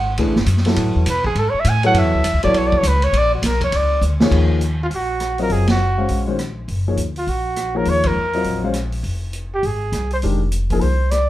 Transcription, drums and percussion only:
0.17 ride
0.36 snare
0.46 hi-hat pedal, ride
0.57 snare
0.65 snare, ride
0.76 ride
1.06 hi-hat pedal, ride
1.24 kick
1.35 ride
1.65 hi-hat pedal, ride
1.83 ride
1.94 ride
2.24 hi-hat pedal, ride
2.43 ride
2.54 ride
2.72 kick
2.83 hi-hat pedal, ride
3.02 ride
3.13 ride
3.43 snare, hi-hat pedal, ride
3.61 kick, ride
3.72 ride
4.02 hi-hat pedal
4.20 snare
4.32 kick, crash
4.61 closed hi-hat
4.91 open hi-hat
5.20 cross-stick, closed hi-hat
5.38 open hi-hat
5.50 open hi-hat
5.67 snare, ride
6.08 open hi-hat
6.39 cross-stick, closed hi-hat
6.68 open hi-hat
6.97 closed hi-hat
7.16 open hi-hat
7.27 open hi-hat
7.56 cross-stick, closed hi-hat
7.85 open hi-hat
8.03 kick, ride
8.33 open hi-hat
8.44 open hi-hat
8.73 cross-stick, closed hi-hat
8.92 open hi-hat
9.04 open hi-hat
9.33 closed hi-hat
9.63 open hi-hat
9.92 cross-stick, closed hi-hat
10.10 open hi-hat
10.22 open hi-hat
10.52 closed hi-hat
10.70 kick, open hi-hat
10.81 open hi-hat
11.11 cross-stick, closed hi-hat

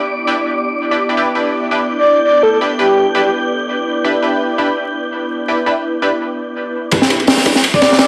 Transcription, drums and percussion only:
6.92 kick, ride
7.02 snare
7.10 ride
7.20 ride
7.27 snare, open hi-hat
7.37 snare
7.46 ride
7.56 snare
7.64 ride
7.74 kick
7.82 snare, ride
7.92 snare
7.99 snare, ride

